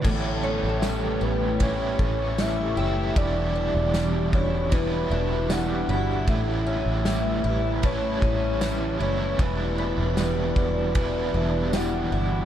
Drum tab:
CC |x-------|--------|--------|--------|
RD |--x-x-x-|x-x-x-x-|x-x-x-x-|x-x-x-x-|
TB |--x---x-|--x---x-|--x---x-|--x---x-|
SD |--o---o-|--o---o-|--o---o-|--o---o-|
BD |o---oo--|o--oo---|o---oo--|o--oo---|